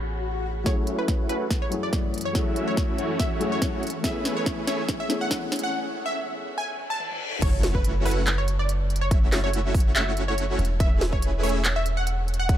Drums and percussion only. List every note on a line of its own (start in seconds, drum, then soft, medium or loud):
0.66 kick medium
0.66 snare soft
0.66 closed hi-hat medium
0.87 closed hi-hat medium
1.08 kick loud
1.08 snare medium
1.08 closed hi-hat medium
1.29 closed hi-hat medium
1.50 kick loud
1.50 snare soft
1.50 closed hi-hat medium
1.72 closed hi-hat medium
1.93 kick medium
1.93 snare medium
1.93 closed hi-hat medium
2.14 closed hi-hat medium
2.18 closed hi-hat medium
2.21 closed hi-hat medium
2.35 kick medium
2.35 snare medium
2.35 closed hi-hat medium
2.56 closed hi-hat medium
2.77 kick loud
2.77 snare medium
2.77 closed hi-hat medium
2.98 closed hi-hat medium
3.19 kick medium
3.19 snare medium
3.19 closed hi-hat medium
3.41 closed hi-hat medium
3.62 kick medium
3.62 snare medium
3.62 closed hi-hat medium
3.83 closed hi-hat soft
3.87 closed hi-hat medium
3.90 closed hi-hat medium
4.04 kick medium
4.04 snare medium
4.04 closed hi-hat medium
4.25 snare medium
4.25 closed hi-hat medium
4.46 kick loud
4.46 snare medium
4.46 closed hi-hat medium
4.67 snare medium
4.67 closed hi-hat medium
4.89 kick loud
4.89 snare medium
4.89 closed hi-hat medium
5.10 snare medium
5.10 closed hi-hat medium
5.31 kick loud
5.31 snare medium
5.31 closed hi-hat medium
5.52 snare medium
5.52 closed hi-hat soft
5.56 closed hi-hat medium
5.59 closed hi-hat medium
7.00 high tom medium
7.11 high tom medium
7.33 mid tom medium
7.42 kick loud
7.42 closed hi-hat medium
7.42 crash loud
7.63 snare medium
7.63 closed hi-hat medium
7.75 kick medium
7.84 closed hi-hat medium
8.06 open hi-hat medium
8.11 closed hi-hat medium
8.27 clap loud
8.27 closed hi-hat medium
8.48 closed hi-hat medium
8.69 closed hi-hat medium
8.90 closed hi-hat medium
8.96 closed hi-hat medium
9.11 kick loud
9.11 closed hi-hat medium
9.32 clap medium
9.32 snare medium
9.32 closed hi-hat medium
9.54 closed hi-hat medium
9.74 kick loud
9.74 open hi-hat medium
9.80 closed hi-hat medium
9.96 clap loud
9.96 closed hi-hat medium
10.17 closed hi-hat medium
10.38 closed hi-hat medium
10.59 closed hi-hat soft
10.65 closed hi-hat medium
10.80 kick loud
10.80 closed hi-hat medium
11.01 snare medium
11.01 closed hi-hat medium
11.13 kick medium
11.22 closed hi-hat medium
11.44 open hi-hat medium
11.49 closed hi-hat medium
11.65 clap loud
11.65 closed hi-hat medium
11.86 closed hi-hat medium
12.07 closed hi-hat medium
12.28 closed hi-hat soft
12.34 closed hi-hat medium
12.49 kick loud
12.49 closed hi-hat medium